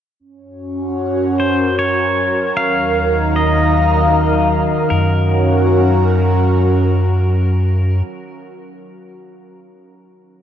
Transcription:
0.19 2.52 F#2 medium
0.19 4.90 F#3 medium
0.19 3.49 C#4 medium
0.19 4.91 F#4 medium
0.43 2.55 F#4 medium
0.96 4.90 A#4 medium
1.40 1.78 C5 medium
1.79 2.56 C#5 medium
2.55 4.86 D#2 medium
2.55 4.90 D#3 medium
2.55 3.36 F5 loud
2.67 4.90 D#4 medium
2.86 4.90 F5 medium
2.86 4.89 A#5 medium
3.36 4.48 D#5 medium
4.90 8.02 F#2 medium
4.90 8.10 F#3 medium
4.90 8.02 C#4 medium
4.90 8.10 F#4 medium
4.90 8.02 A#4 medium
4.99 8.00 F#4 medium
5.13 8.01 A#4 medium

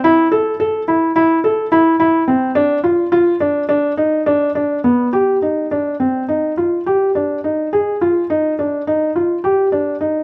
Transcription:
0.04 0.26 E4 medium
0.32 0.53 A4 medium
0.60 0.82 A4 medium
0.88 1.10 E4 medium
1.16 1.37 E4 medium
1.44 1.66 A4 medium
1.72 1.93 E4 medium
2.00 2.21 E4 medium
2.28 2.49 C4 medium
2.55 2.77 D4 medium
2.84 3.06 F4 medium
3.12 3.34 F4 medium
3.40 3.62 D4 medium
3.69 3.91 D4 medium
3.97 4.20 D#4 medium
4.26 4.49 D4 medium
4.55 4.78 D4 medium
4.84 5.07 B3 medium
5.13 5.36 G4 medium
5.42 5.65 D#4 soft
5.71 5.94 D4 medium
6.00 6.22 C4 soft
6.28 6.51 D#4 medium
6.57 6.80 F4 soft
6.86 7.09 G4 medium
7.15 7.37 D4 medium
7.44 7.66 D#4 soft
7.73 7.95 G#4 medium
8.01 8.23 F4 medium
8.30 8.52 D#4 medium
8.59 8.81 D4 medium
8.87 9.09 D#4 medium
9.16 9.38 F4 medium
9.44 9.66 G4 medium
9.72 9.94 D4 medium
10.01 10.23 D#4 medium

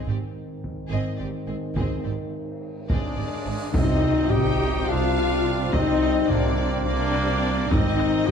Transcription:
0.00 3.42 G#2 medium
0.00 3.43 D#3 medium
0.00 2.87 C4 medium
0.00 2.87 D#4 medium
0.07 0.15 G#1 soft
0.07 0.15 G#2 soft
0.07 0.15 C4 soft
0.07 0.16 G4 soft
0.07 0.16 D5 soft
0.64 taiko soft
0.89 1.00 G#1 medium
0.89 1.00 G#2 medium
0.89 1.18 C4 medium
0.89 1.17 G#4 medium
0.89 1.18 D#5 medium
1.18 1.29 G#1 soft
1.18 1.29 G#2 soft
1.18 1.28 C4 soft
1.18 1.27 G4 medium
1.18 1.26 D5 soft
1.47 1.57 G#1 soft
1.47 1.56 G#2 soft
1.47 1.56 C4 soft
1.47 1.56 G#4 soft
1.47 1.55 D#5 soft
1.75 1.83 G#1 medium
1.75 1.85 G#2 medium
1.75 2.02 C4 medium
1.75 2.03 G#4 soft
1.75 2.03 D#5 soft
1.75 taiko medium
1.75 cymbal swell soft
2.03 2.13 G#1 soft
2.03 2.13 G#2 soft
2.03 2.11 C4 soft
2.03 2.12 G4 soft
2.03 2.12 D5 soft
2.87 2.97 G#1 soft
2.87 2.98 G#2 soft
2.87 3.75 G#3 medium
2.87 3.16 C4 soft
2.87 3.70 D4 medium
2.87 3.71 D4 medium
2.87 3.16 G#4 soft
2.87 3.17 D5 medium
2.87 3.71 D5 medium
2.87 3.16 D#5 medium
2.87 taiko medium
3.18 3.26 G#1 soft
3.18 3.26 G#2 soft
3.18 3.26 C4 soft
3.18 3.26 G4 soft
3.18 3.26 D5 soft
3.45 3.54 G#1 soft
3.45 3.55 G#2 soft
3.45 3.53 C4 soft
3.45 3.54 G#4 soft
3.45 3.54 D#5 soft
3.72 4.25 C2 medium
3.72 4.25 C3 medium
3.72 7.67 G3 medium
3.72 4.32 C4 medium
3.72 7.67 C4 medium
3.72 4.30 D#4 loud
3.72 4.31 D#4 medium
3.72 4.29 D#5 medium
3.72 4.31 D#5 medium
3.72 taiko loud
3.72 tam-tam medium
3.72 sub drop medium
4.30 4.81 C2 medium
4.30 4.82 C3 medium
4.30 4.89 D#4 medium
4.30 4.88 G4 loud
4.30 4.88 G5 medium
4.30 4.88 G5 loud
4.30 taiko low-mid medium
4.87 5.63 C2 medium
4.87 5.63 C3 medium
4.87 5.72 D4 medium
4.87 5.73 F4 loud
4.87 5.55 F4 loud
4.87 5.73 F5 loud
5.72 6.23 C2 medium
5.72 6.22 C3 loud
5.72 6.30 C4 medium
5.72 6.28 D#4 loud
5.72 6.29 D#4 loud
5.72 6.28 D#5 loud
5.72 6.30 D#5 loud
5.72 taiko loud
6.29 6.79 C2 medium
6.29 6.79 C3 loud
6.29 6.84 A#3 medium
6.29 6.84 D4 medium
6.29 6.84 D4 loud
6.29 6.83 D5 medium
6.29 6.86 D5 loud
6.29 taiko low-mid medium
6.84 7.61 C2 medium
6.84 7.61 C3 medium
6.84 7.69 A#3 loud
6.84 7.69 D4 loud
6.84 7.68 D5 loud
6.84 7.70 D5 loud
7.14 taiko rim soft
7.70 8.21 G#1 medium
7.70 8.21 G#2 loud
7.70 8.31 D#3 medium
7.70 8.28 C4 loud
7.70 8.31 C4 loud
7.70 8.28 D#4 loud
7.70 8.27 D#5 loud
7.70 8.28 D#5 medium
7.70 taiko loud
8.00 taiko rim soft
8.27 8.31 G#1 loud
8.27 8.31 G#2 medium
8.27 8.31 D#4 loud
8.27 8.31 G4 loud
8.27 8.31 G5 loud

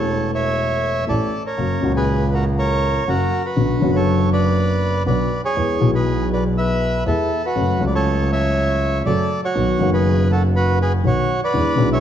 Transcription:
0.00 1.01 E1 medium
0.00 1.01 E2 medium
0.00 1.00 E3 medium
0.00 1.01 A3 soft
0.00 1.02 C#4 soft
0.00 0.31 A4 soft
0.00 1.03 A4 medium
0.00 0.31 C#5 medium
0.34 1.05 C#5 medium
0.34 1.05 E5 medium
1.07 1.29 A1 soft
1.07 1.29 A1 medium
1.07 1.29 A2 soft
1.07 1.28 E3 soft
1.07 1.28 A3 soft
1.07 1.29 C#4 soft
1.07 1.29 A4 soft
1.07 1.43 A4 soft
1.07 1.43 D5 medium
1.46 1.92 A#4 medium
1.46 1.92 C#5 medium
1.58 1.79 F#1 medium
1.58 1.79 F#2 soft
1.58 1.79 C#3 soft
1.58 1.79 F#3 soft
1.58 1.79 A#3 soft
1.58 1.79 F#4 soft
1.81 3.01 C#2 medium
1.81 3.01 A#2 soft
1.81 3.01 C#3 medium
1.81 3.00 F#3 soft
1.81 3.02 F#4 medium
1.96 2.30 G#4 soft
1.96 2.34 B4 medium
2.34 2.45 F#4 medium
2.34 2.45 A#4 medium
2.59 3.04 A#4 medium
2.59 3.09 C#5 medium
3.07 3.28 F#1 medium
3.07 3.28 F#2 soft
3.07 3.28 C#3 soft
3.07 3.28 F#3 soft
3.07 3.28 A#3 soft
3.07 3.28 F#4 soft
3.07 3.43 F#4 medium
3.07 3.46 A#4 medium
3.46 3.91 F#4 soft
3.46 3.96 B4 medium
3.56 3.78 B1 soft
3.56 3.78 B1 medium
3.56 3.78 B2 medium
3.56 3.77 D3 soft
3.56 3.78 F#3 soft
3.56 3.78 B3 soft
3.56 3.78 F#4 soft
3.80 5.00 F#1 medium
3.80 5.00 F#2 medium
3.80 4.99 D3 medium
3.80 5.00 F#3 soft
3.80 5.01 B3 medium
3.84 5.01 F#4 medium
3.96 4.30 A4 medium
3.96 4.30 C#5 medium
4.33 5.03 B4 medium
4.33 5.03 D5 medium
5.06 5.27 B1 medium
5.06 5.27 B1 soft
5.06 5.27 B2 soft
5.06 5.27 D3 soft
5.06 5.27 F#3 soft
5.06 5.27 B3 soft
5.06 5.27 F#4 soft
5.06 5.42 B4 medium
5.06 5.42 D5 medium
5.45 5.91 G#4 medium
5.45 5.91 C#5 medium
5.56 5.77 E2 medium
5.56 5.77 E2 soft
5.56 5.77 E3 soft
5.56 5.77 G#3 soft
5.56 5.77 B3 soft
5.56 5.78 G#4 soft
5.79 7.00 B1 medium
5.79 7.00 B2 medium
5.79 6.99 E3 medium
5.79 7.00 G#3 soft
5.79 7.00 B3 soft
5.83 7.01 G#4 medium
5.95 6.29 G#4 soft
5.95 6.29 B4 medium
6.33 6.44 B4 medium
6.33 6.44 D5 medium
6.58 7.04 B4 medium
6.58 7.04 E5 medium
7.06 7.27 E2 soft
7.06 7.27 E3 soft
7.06 7.27 G#3 soft
7.06 7.27 B3 soft
7.06 7.42 E4 soft
7.06 7.27 G#4 soft
7.06 7.45 A4 medium
7.45 7.85 F#4 soft
7.45 7.84 B4 medium
7.55 7.77 F#1 medium
7.55 7.77 F#2 soft
7.55 7.77 C#3 soft
7.55 7.77 F#3 soft
7.55 7.77 A3 soft
7.55 7.77 F#4 soft
7.79 8.99 C#2 medium
7.79 8.99 C#3 medium
7.79 8.99 F#3 soft
7.79 8.99 A3 soft
7.79 9.00 F#4 medium
7.87 7.94 D5 medium
7.95 8.29 A4 medium
7.95 8.31 C#5 medium
8.32 9.02 C#5 medium
8.32 9.02 E5 medium
9.06 9.27 F#1 soft
9.06 9.27 F#2 soft
9.06 9.27 C#3 soft
9.06 9.27 F#3 soft
9.06 9.27 A3 soft
9.06 9.27 F#4 soft
9.06 9.41 A4 medium
9.06 9.41 D5 medium
9.44 9.90 F#4 medium
9.44 9.90 C#5 medium
9.55 9.76 B1 soft
9.55 9.77 B1 medium
9.55 9.76 B2 soft
9.55 9.76 D#3 soft
9.55 9.76 F#3 soft
9.55 9.76 B3 soft
9.55 9.77 F#4 soft
9.79 10.98 F#1 medium
9.79 10.99 F#1 medium
9.79 10.98 F#2 medium
9.79 10.97 D#3 medium
9.79 10.98 F#3 soft
9.79 10.99 B3 soft
9.79 10.99 F#4 medium
9.93 10.28 G#4 medium
9.93 10.31 B4 medium
10.32 10.43 F#4 medium
10.32 10.42 A4 medium
10.56 10.79 F#4 medium
10.56 10.79 B4 medium
10.82 10.93 G#4 medium
10.82 10.92 B4 medium
11.04 11.25 B1 soft
11.04 11.26 B1 medium
11.04 11.25 B2 soft
11.04 11.25 D#3 soft
11.04 11.25 F#3 soft
11.04 11.25 B3 soft
11.04 11.25 F#4 soft
11.04 11.41 F#4 medium
11.04 11.40 C#5 medium
11.44 11.90 B4 medium
11.44 11.89 D5 medium
11.54 11.75 E2 medium
11.54 11.74 D3 soft
11.54 11.75 E3 soft
11.54 11.75 G#3 soft
11.54 11.75 B3 soft
11.54 11.75 E4 soft
11.76 12.00 B1 medium
11.76 12.00 B2 medium
11.76 12.00 D3 medium
11.76 12.00 G#3 soft
11.76 12.00 B3 medium
11.80 12.00 E4 medium
11.93 12.00 C#5 medium
11.93 12.00 E5 medium

